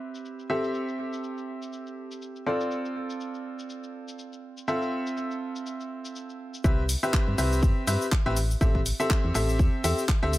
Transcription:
Already playing: upright piano C4 G4 B4 E5
0.15 cabasa
0.25 cabasa
0.39 cabasa
0.50 upright piano C4 G4 A4 E5
0.64 cabasa
0.74 cabasa
0.88 cabasa
1.13 cabasa
1.24 cabasa
1.38 cabasa
1.62 cabasa
1.73 cabasa
1.87 cabasa
2.11 cabasa
2.22 cabasa
2.36 cabasa
2.46 upright piano C4 F4 A4 D5
2.61 cabasa
2.71 cabasa
2.85 cabasa
3.10 cabasa
3.20 cabasa
3.34 cabasa
3.59 cabasa
3.70 cabasa
3.84 cabasa
4.08 cabasa
4.19 cabasa
4.33 cabasa
4.57 cabasa
4.68 upright piano C4 F4 A4 E5, cabasa
4.82 cabasa
5.07 cabasa
5.17 cabasa
5.31 cabasa
5.56 cabasa
5.66 cabasa
5.80 cabasa
6.05 cabasa
6.16 cabasa
6.30 cabasa
6.54 cabasa
6.64 fm bass C2, upright piano C4 G4 B4 E5, kick, cabasa
6.89 open hi-hat, cabasa
7.03 upright piano C4 G4 B4 E5, cabasa
7.13 kick, clap, cabasa
7.28 fm bass G2
7.38 fm bass C2, upright piano C4 G4 B4 E5, open hi-hat, cabasa
7.52 cabasa
7.63 fm bass G2, kick, cabasa
7.87 fm bass G2, upright piano C4 G4 B4 E5, open hi-hat, cabasa
8.02 cabasa
8.12 kick, clap, cabasa
8.26 fm bass A1, upright piano C4 G4 B4 E5
8.37 open hi-hat, cabasa
8.51 cabasa
8.61 fm bass A1, upright piano C4 G4 A4 E5, kick, cabasa
8.75 kick
8.86 open hi-hat, cabasa
9.00 upright piano C4 G4 A4 E5, cabasa
9.10 kick, clap, cabasa
9.24 fm bass E2
9.35 fm bass A1, upright piano C4 G4 A4 E5, clap, open hi-hat, cabasa
9.49 cabasa
9.59 fm bass E2, kick, cabasa
9.84 fm bass E2, upright piano C4 G4 A4 E5, open hi-hat, cabasa
9.98 cabasa
10.09 kick, clap, cabasa
10.23 fm bass D2, upright piano C4 G4 A4 E5
10.33 open hi-hat, cabasa

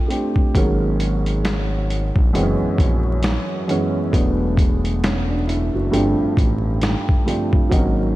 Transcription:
Already playing: felt piano A3 C4 D4 F4 F#4
0.08 felt piano A3 C4 D4 G4, closed hi-hat
0.36 kick
0.54 analog synth bass G#1, felt piano G#2 D#3 F#3 A#3 C#4, kick, closed hi-hat
1.00 closed hi-hat
1.26 closed hi-hat
1.45 snare, closed hi-hat
1.90 closed hi-hat
2.16 analog synth bass A#1, kick
2.33 analog synth bass F#1, felt piano F#2 E3 G#3 B3 C4, closed hi-hat
2.43 felt piano C#4
2.61 analog synth bass A#1
2.78 analog synth bass A#1, kick, closed hi-hat
3.23 snare, closed hi-hat
3.68 felt piano F#2 E3 G#3 B3 C#4, closed hi-hat
4.12 analog synth bass E1, felt piano E2 F#3 A3 B3 D4, kick, closed hi-hat
4.57 kick, closed hi-hat
4.85 closed hi-hat
5.04 felt piano C#4, snare, closed hi-hat
5.28 felt piano D4
5.48 felt piano E4, closed hi-hat
5.75 analog synth bass F#1, felt piano F#4
5.92 analog synth bass G1, felt piano G2 F3 A3 C4 D4, closed hi-hat
6.20 analog synth bass A1
6.37 analog synth bass A1, kick, closed hi-hat
6.81 snare, closed hi-hat
7.09 kick
7.26 felt piano G2 F3 A3 C4 D4, closed hi-hat
7.53 kick
7.70 analog synth bass G#1, felt piano F#3 A#3 C4 D#4, kick, closed hi-hat
7.78 felt piano C#4

